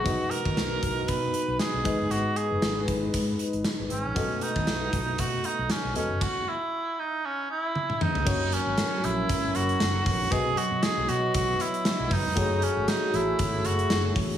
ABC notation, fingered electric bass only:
X:1
M:4/4
L:1/16
Q:"Swing 16ths" 1/4=117
K:B
V:1 name="Fingered electric bass" clef=bass
B,,, z2 D,, B,,,2 B,,,2 B,,2 z B,,, z B,,, G,,, F,,, | G,,, z2 F,,, G,,,2 G,,,2 G,,2 z G,,, z G,,, G,,, A,,, | B,,, z2 D,, B,,,2 B,,,2 B,,2 z B,,, z B,,, E,,, F,,, | z16 |
F,,,3 G,,, z2 A,,,2 G,,,2 F,,,2 F,,,2 A,,,2 | B,,,2 z B,, z B,,, B,,2 B,,,2 z3 B,,, F,,, E,,, | F,,,3 G,,, z2 =A,,,2 G,,,2 F,,,2 F,,,2 A,,,2 |]